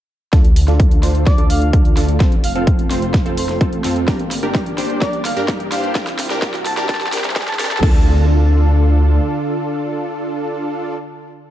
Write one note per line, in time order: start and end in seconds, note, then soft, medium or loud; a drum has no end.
0.33 0.66 D2 loud
0.33 2.18 D3 medium
0.33 0.46 D4 medium
0.33 2.18 D4 medium
0.33 0.46 F4 medium
0.33 2.18 F4 medium
0.33 2.18 A4 medium
0.33 0.46 A4 loud
0.33 kick loud
0.33 snare soft
0.33 closed hi-hat medium
0.33 riser medium
0.45 closed hi-hat soft
0.56 open hi-hat loud
0.68 1.01 D2 medium
0.68 1.00 D4 medium
0.68 1.00 F4 medium
0.68 1.00 A4 medium
0.68 snare soft
0.68 closed hi-hat soft
0.80 kick loud
0.80 closed hi-hat medium
0.91 closed hi-hat soft
1.03 1.36 D2 medium
1.03 1.35 D4 medium
1.03 1.35 F4 medium
1.03 1.35 C5 loud
1.03 snare soft
1.03 open hi-hat medium
1.15 closed hi-hat soft
1.26 1.45 D5 medium
1.26 kick loud
1.26 snare soft
1.26 closed hi-hat medium
1.38 1.71 D2 medium
1.38 1.71 D4 medium
1.38 1.71 F4 medium
1.38 1.71 A4 medium
1.38 closed hi-hat soft
1.50 1.69 F5 medium
1.50 open hi-hat loud
1.62 closed hi-hat soft
1.73 1.94 D2 loud
1.73 1.94 D4 medium
1.73 1.94 F4 medium
1.73 1.94 A4 medium
1.73 kick loud
1.73 closed hi-hat medium
1.85 closed hi-hat soft
1.97 2.18 D2 medium
1.97 2.17 D4 medium
1.97 2.17 F4 medium
1.97 2.17 A4 medium
1.97 snare medium
1.97 open hi-hat medium
2.09 closed hi-hat soft
2.20 2.53 F1 medium
2.20 4.06 A3 medium
2.20 4.06 C4 medium
2.20 2.33 C4 medium
2.20 4.06 F4 medium
2.20 2.33 F4 medium
2.20 2.33 A4 loud
2.20 kick loud
2.20 snare medium
2.20 closed hi-hat medium
2.32 closed hi-hat soft
2.44 2.51 F5 medium
2.44 open hi-hat loud
2.55 2.88 F1 medium
2.55 2.88 C4 medium
2.55 2.88 F4 medium
2.55 2.88 A4 medium
2.55 2.63 F5 medium
2.55 closed hi-hat soft
2.67 kick loud
2.67 closed hi-hat medium
2.79 closed hi-hat soft
2.91 3.23 F1 loud
2.91 3.23 C4 medium
2.91 3.23 F4 medium
2.91 3.23 C5 loud
2.91 snare medium
2.91 open hi-hat medium
3.02 closed hi-hat soft
3.14 kick loud
3.14 snare medium
3.14 closed hi-hat medium
3.26 3.59 F1 loud
3.26 3.58 C4 medium
3.26 3.58 F4 medium
3.26 3.58 A4 medium
3.26 closed hi-hat soft
3.37 3.45 C5 medium
3.37 open hi-hat loud
3.49 3.57 C5 medium
3.49 snare medium
3.49 closed hi-hat soft
3.61 3.82 F1 loud
3.61 3.82 C4 medium
3.61 3.82 F4 medium
3.61 3.82 A4 medium
3.61 kick loud
3.61 closed hi-hat medium
3.73 closed hi-hat soft
3.84 4.05 F2 medium
3.84 4.05 C4 medium
3.84 4.05 F4 medium
3.84 4.05 A4 medium
3.84 snare medium
3.84 open hi-hat medium
3.96 closed hi-hat soft
4.08 4.41 G1 loud
4.08 5.93 A#3 medium
4.08 5.93 D4 medium
4.08 4.21 D4 medium
4.08 4.21 G4 medium
4.08 7.79 G4 medium
4.08 4.21 A#4 medium
4.08 kick loud
4.08 snare medium
4.08 closed hi-hat medium
4.19 closed hi-hat soft
4.31 snare medium
4.31 open hi-hat loud
4.43 4.76 G1 medium
4.43 4.75 D4 medium
4.43 4.75 G4 medium
4.43 4.75 A#4 medium
4.43 closed hi-hat soft
4.55 kick loud
4.55 snare medium
4.55 closed hi-hat medium
4.66 closed hi-hat soft
4.78 4.99 G1 medium
4.78 5.00 D4 medium
4.78 5.00 G4 medium
4.78 5.00 C5 medium
4.78 snare medium
4.78 open hi-hat medium
4.90 closed hi-hat soft
5.01 5.34 G1 medium
5.01 5.14 D4 medium
5.01 5.14 G4 medium
5.01 5.14 A#4 loud
5.01 5.20 D5 medium
5.01 kick loud
5.01 snare medium
5.01 closed hi-hat medium
5.13 closed hi-hat soft
5.25 5.44 F5 medium
5.25 snare medium
5.25 open hi-hat loud
5.37 5.69 G2 loud
5.37 5.69 D4 medium
5.37 5.69 G4 medium
5.37 5.69 A#4 medium
5.37 closed hi-hat soft
5.48 kick loud
5.48 snare medium
5.48 closed hi-hat medium
5.60 closed hi-hat soft
5.72 5.93 G2 medium
5.72 5.93 D4 medium
5.72 5.93 G4 medium
5.72 5.93 C5 loud
5.72 5.91 F5 medium
5.72 snare medium
5.72 open hi-hat loud
5.84 closed hi-hat soft
5.95 6.28 C2 loud
5.95 7.81 C3 medium
5.95 7.81 C4 medium
5.95 6.08 D4 medium
5.95 7.81 E4 medium
5.95 6.08 G4 medium
5.95 6.08 A#4 loud
5.95 kick loud
5.95 snare medium
5.95 closed hi-hat medium
6.07 snare medium
6.07 closed hi-hat soft
6.19 snare medium
6.19 open hi-hat loud
6.30 6.40 C2 medium
6.30 6.40 D4 medium
6.30 6.40 G4 medium
6.30 6.40 A#4 medium
6.30 snare medium
6.30 closed hi-hat soft
6.42 6.75 C2 medium
6.42 6.55 D4 medium
6.42 6.55 G4 medium
6.42 6.55 A#4 loud
6.42 kick loud
6.42 snare medium
6.42 closed hi-hat medium
6.54 snare medium
6.54 closed hi-hat soft
6.65 6.73 A5 medium
6.65 snare medium
6.65 open hi-hat medium
6.77 6.87 C2 loud
6.77 6.87 D4 medium
6.77 6.87 G4 medium
6.77 6.87 A#4 medium
6.77 6.85 A5 medium
6.77 snare medium
6.77 closed hi-hat soft
6.89 7.10 C2 loud
6.89 7.02 G4 medium
6.89 6.96 A5 medium
6.89 kick loud
6.89 snare loud
6.89 closed hi-hat medium
6.95 snare medium
7.01 7.08 A5 medium
7.01 snare loud
7.01 closed hi-hat soft
7.07 snare medium
7.12 7.34 C2 loud
7.12 7.25 D4 medium
7.12 7.25 G4 medium
7.12 7.25 A#4 loud
7.12 snare loud
7.12 open hi-hat loud
7.18 snare medium
7.24 snare loud
7.24 closed hi-hat soft
7.30 snare loud
7.36 7.57 C2 loud
7.36 7.49 D4 medium
7.36 7.49 G4 medium
7.36 7.49 A#4 loud
7.36 kick loud
7.36 snare loud
7.36 closed hi-hat medium
7.42 snare medium
7.48 7.83 A5 loud
7.48 snare medium
7.48 closed hi-hat soft
7.53 snare medium
7.59 7.80 C2 loud
7.59 7.72 D4 medium
7.59 7.72 G4 medium
7.59 7.72 A#4 loud
7.59 snare loud
7.59 open hi-hat medium
7.65 snare loud
7.71 snare loud
7.71 closed hi-hat soft
7.77 snare loud
7.83 9.19 D2 loud
7.83 10.95 D3 medium
7.83 10.95 D4 medium
7.83 10.95 F4 medium
7.83 10.95 A4 medium
7.83 kick loud
7.83 crash medium